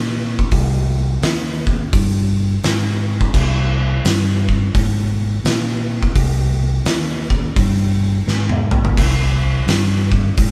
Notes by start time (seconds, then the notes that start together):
Already playing: A#2
0.39 kick
0.51 C2, kick, open hi-hat
1.22 D#2, snare, open hi-hat
1.67 kick
1.93 G2, kick, open hi-hat
2.63 G#2, snare, open hi-hat
3.21 kick
3.34 C2, kick, crash
4.04 G2, snare, open hi-hat
4.49 kick
4.74 G#2, kick, open hi-hat
5.44 A#2, snare, open hi-hat
6.03 kick
6.15 C2, kick, open hi-hat
6.84 D#2, snare, open hi-hat
7.30 kick
7.56 G2, kick, open hi-hat
8.26 G#2, snare
8.49 high tom
8.71 mid tom
8.85 floor tom
8.97 C2, kick, open hi-hat, crash
9.66 G2, snare, open hi-hat
10.12 kick
10.37 G#2, kick, open hi-hat